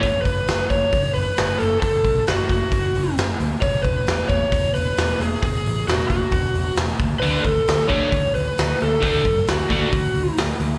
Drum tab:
HH |oooooooo|oooooooo|oooooooo|oooooooo|
SD |--o---o-|--o---o-|--o---o-|--o---o-|
BD |oo-oo---|oo-oo---|oo-oo---|o--oo--o|

HH |oooooooo|oooooooo|
SD |--o---o-|--o---o-|
BD |-o-oo---|oo-oo---|